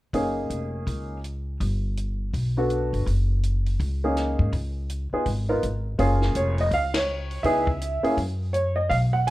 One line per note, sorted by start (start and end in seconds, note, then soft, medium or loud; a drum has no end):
0.13 0.48 F#1 medium
0.13 1.16 A#3 medium
0.13 1.16 C#4 soft
0.13 1.16 D#4 soft
0.13 1.16 G#4 medium
0.13 kick soft
0.13 open hi-hat soft
0.50 0.84 F1 medium
0.50 closed hi-hat soft
0.87 1.56 C#2 medium
0.87 kick soft
0.87 open hi-hat soft
1.24 closed hi-hat soft
1.60 2.30 G1 medium
1.60 kick soft
1.60 open hi-hat soft
1.97 closed hi-hat soft
2.34 2.89 B1 medium
2.34 kick soft
2.34 open hi-hat soft
2.57 3.04 B3 medium
2.57 3.05 D4 soft
2.57 3.05 F#4 soft
2.57 3.05 A4 medium
2.70 closed hi-hat soft
2.93 3.06 G1 medium
2.93 open hi-hat soft
3.06 3.76 F#1 medium
3.06 kick soft
3.06 open hi-hat soft
3.44 closed hi-hat soft
3.66 open hi-hat soft
3.80 4.35 C#2 medium
3.80 kick soft
3.80 open hi-hat soft
4.04 4.51 A#3 medium
4.04 4.51 C#4 medium
4.04 4.51 D#4 soft
4.04 4.51 G#4 medium
4.16 snare soft
4.16 closed hi-hat soft
4.39 4.52 G#2 medium
4.39 kick soft
4.52 5.08 C#2 medium
4.52 kick soft
4.52 open hi-hat soft
4.89 closed hi-hat soft
5.12 5.25 B3 soft
5.12 5.25 D#4 soft
5.12 5.25 F4 soft
5.12 5.25 G#4 medium
5.12 muted upright bass stroke soft
5.26 5.60 G#1 medium
5.26 kick soft
5.26 open hi-hat soft
5.49 5.61 B3 medium
5.49 5.61 D#4 medium
5.49 5.61 F4 medium
5.49 5.61 A#4 medium
5.63 5.97 G#1 medium
5.63 closed hi-hat soft
5.98 6.33 F#1 medium
5.98 6.53 A#3 medium
5.98 6.54 C#4 medium
5.98 6.54 F4 medium
5.98 6.54 G#4 medium
5.98 kick soft
5.98 open hi-hat soft
6.22 snare soft
6.35 6.69 F1 medium
6.35 6.59 C#5 medium
6.35 closed hi-hat soft
6.58 6.73 D#5 medium
6.58 open hi-hat soft
6.71 7.41 C#2 medium
6.71 6.94 F5 medium
6.71 kick soft
6.71 open hi-hat soft
6.94 7.47 C#5 medium
6.94 snare medium
6.94 ride medium
7.31 open hi-hat soft
7.43 8.00 C#2 medium
7.43 7.66 B3 medium
7.43 7.65 D#4 medium
7.43 7.66 E4 medium
7.43 7.66 G#4 medium
7.43 8.13 E5 medium
7.43 kick soft
7.43 open hi-hat soft
7.67 kick soft
7.81 closed hi-hat soft
8.03 8.16 A#3 medium
8.03 8.16 C#4 medium
8.03 8.16 E4 medium
8.03 8.16 G#4 medium
8.03 muted upright bass stroke soft
8.03 open hi-hat soft
8.17 8.87 F#2 medium
8.17 kick soft
8.17 open hi-hat soft
8.53 8.75 C#5 medium
8.53 closed hi-hat soft
8.76 8.89 D#5 medium
8.89 9.30 B1 medium
8.89 8.95 F5 medium
8.89 kick soft
8.89 open hi-hat soft
9.13 9.27 F#5 medium
9.27 9.30 G#5 medium